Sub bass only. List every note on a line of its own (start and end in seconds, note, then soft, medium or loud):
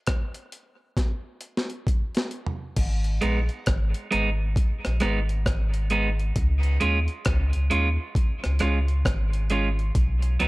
2.77 3.19 G#1 loud
3.23 3.49 A#1 medium
3.68 3.94 G#1 loud
4.13 4.55 G#1 medium
4.86 5.01 A#1 loud
5.03 5.44 G#1 medium
5.47 6.32 G#1 medium
6.37 6.78 C#2 loud
6.83 7.08 D#2 medium
7.27 7.53 C#2 medium
7.56 7.71 C#2 medium
7.73 7.98 D#2 medium
8.45 8.60 C#2 medium
8.62 9.03 C#2 medium
9.06 9.91 G#1 medium
9.96 10.38 B1 medium
10.41 10.48 C#2 medium